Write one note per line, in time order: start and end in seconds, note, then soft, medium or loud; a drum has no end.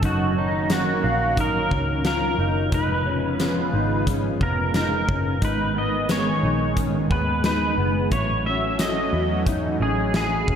0.00 1.00 F#1 medium
0.00 2.70 D#3 medium
0.00 2.68 F#3 medium
0.00 0.36 F#3 medium
0.00 2.70 A#3 medium
0.00 2.68 C#4 medium
0.00 0.36 C#4 medium
0.00 0.36 D#4 medium
0.00 kick loud
0.00 closed hi-hat medium
0.04 0.39 F#4 medium
0.04 0.34 A#4 medium
0.35 0.71 D#4 soft
0.35 0.72 D#4 medium
0.35 0.69 A#4 soft
0.39 0.69 C#4 soft
0.69 1.03 F#3 soft
0.69 1.04 C#4 medium
0.69 1.04 D#4 medium
0.69 1.41 F#4 medium
0.69 snare medium
0.69 closed hi-hat medium
0.73 1.01 A#4 medium
1.03 1.68 A#1 medium
1.03 1.37 D#4 soft
1.03 1.37 A#4 medium
1.03 1.37 F5 medium
1.07 1.37 C#4 soft
1.36 1.71 F#3 medium
1.36 1.71 C#4 medium
1.36 1.71 D#4 medium
1.36 1.69 A#4 medium
1.36 2.06 A#4 medium
1.36 kick medium
1.36 closed hi-hat medium
1.71 2.35 C#2 medium
1.71 2.04 C#4 soft
1.71 2.05 D#4 soft
1.71 kick medium
2.03 2.38 F#3 medium
2.03 2.39 C#4 medium
2.03 2.39 D#4 medium
2.03 2.38 F4 medium
2.03 2.74 A#4 medium
2.03 snare medium
2.03 closed hi-hat soft
2.08 2.36 A#4 medium
2.37 2.71 F#1 medium
2.37 2.73 D#4 soft
2.37 2.72 A#4 medium
2.42 2.72 C#4 soft
2.71 3.69 F1 medium
2.71 5.39 C#3 medium
2.71 3.06 F3 medium
2.71 5.39 F3 medium
2.71 5.39 G#3 medium
2.71 3.06 G#3 medium
2.71 5.39 B3 medium
2.71 3.06 C#4 medium
2.71 3.05 D#4 medium
2.71 5.39 F4 medium
2.71 3.06 G#4 medium
2.71 4.04 B4 medium
2.71 3.04 B4 medium
2.71 kick medium
2.71 closed hi-hat medium
3.05 3.40 G#4 soft
3.05 3.39 B4 soft
3.09 3.39 C#4 soft
3.38 3.73 G#3 soft
3.38 3.74 C#4 medium
3.38 3.74 G#4 medium
3.38 snare medium
3.38 closed hi-hat medium
3.43 3.71 B4 medium
3.72 4.38 G#1 medium
3.72 4.06 D#4 medium
3.72 4.08 G#4 soft
3.72 4.07 B4 medium
3.77 4.07 C#4 soft
4.07 4.41 F3 medium
4.07 4.41 G#3 medium
4.07 4.41 C#4 medium
4.07 4.41 G#4 medium
4.07 4.42 B4 medium
4.07 kick medium
4.07 closed hi-hat medium
4.40 5.05 F1 medium
4.40 4.74 B3 medium
4.40 4.75 G#4 soft
4.40 4.75 A#4 medium
4.40 kick medium
4.73 5.08 G#3 medium
4.73 5.09 C#4 medium
4.73 5.08 D#4 medium
4.73 5.09 G#4 medium
4.73 5.44 A#4 medium
4.73 snare medium
4.73 closed hi-hat soft
5.08 5.40 F#1 medium
5.08 5.41 C#4 medium
5.08 kick medium
5.12 5.44 C#4 soft
5.41 6.39 G#1 medium
5.41 5.76 G#2 medium
5.41 8.08 D#3 medium
5.41 5.76 D#3 medium
5.41 8.08 G#3 medium
5.41 5.76 G#3 medium
5.41 8.08 B3 medium
5.41 5.77 B3 medium
5.41 5.76 D#4 medium
5.41 8.08 G#4 medium
5.41 5.78 B4 medium
5.41 kick loud
5.41 closed hi-hat medium
5.75 6.09 B3 soft
5.75 6.10 D#4 soft
5.75 6.09 A#4 soft
5.75 6.11 D#5 medium
5.79 6.07 G#3 soft
6.09 6.43 G#3 soft
6.09 6.43 B3 medium
6.09 6.43 D#4 medium
6.09 6.74 C#5 medium
6.09 snare loud
6.09 closed hi-hat medium
6.13 6.41 A#4 medium
6.42 7.07 A#1 medium
6.42 6.77 B3 soft
6.42 6.77 D#4 soft
6.42 6.76 A#4 soft
6.47 6.76 G#3 soft
6.76 7.10 G#2 medium
6.76 7.10 D#3 medium
6.76 7.11 G#3 medium
6.76 7.11 B3 medium
6.76 7.10 C#4 medium
6.76 7.10 D#4 medium
6.76 7.12 A#4 medium
6.76 kick medium
6.76 closed hi-hat medium
7.10 7.75 D#2 medium
7.10 7.43 B3 medium
7.10 7.44 B4 medium
7.10 kick medium
7.43 7.77 G#3 medium
7.43 7.78 B3 medium
7.43 7.77 D#4 medium
7.43 8.12 B4 medium
7.43 snare loud
7.43 closed hi-hat soft
7.78 8.10 F#1 medium
7.78 8.12 G#3 soft
7.78 8.13 B3 soft
8.11 9.09 A1 medium
8.11 8.45 A2 medium
8.11 10.56 E3 medium
8.11 10.56 F#3 medium
8.11 8.46 F#3 medium
8.11 10.56 A3 medium
8.11 10.56 C#4 medium
8.11 8.46 C#4 medium
8.11 8.43 E4 medium
8.11 10.56 F#4 medium
8.11 8.47 C#5 medium
8.11 kick medium
8.11 closed hi-hat medium
8.44 8.80 C#4 soft
8.44 8.79 E4 soft
8.44 8.80 E5 loud
8.49 8.78 F#3 soft
8.78 9.12 A2 medium
8.78 9.13 F#3 medium
8.78 9.13 C#4 medium
8.78 9.43 D#5 medium
8.78 snare medium
8.78 closed hi-hat medium
8.82 9.11 E4 medium
9.12 9.77 E2 medium
9.12 9.46 E4 soft
9.16 9.46 F#3 soft
9.46 9.80 A2 medium
9.46 9.80 F#3 medium
9.46 9.81 C#4 medium
9.46 9.80 D#4 medium
9.46 9.78 E4 medium
9.46 kick medium
9.46 closed hi-hat medium
9.79 10.44 A1 medium
9.79 10.14 C#4 soft
9.79 10.14 E4 soft
9.79 10.15 G#4 medium
9.84 10.13 F#3 soft
10.12 10.47 A2 medium
10.12 10.48 F#3 medium
10.12 10.47 C#4 medium
10.12 10.56 G#4 medium
10.12 snare medium
10.12 closed hi-hat soft
10.17 10.45 E4 medium
10.46 10.56 E1 medium
10.46 10.56 C#4 soft
10.46 10.56 E4 medium
10.46 kick medium
10.51 10.56 F#3 soft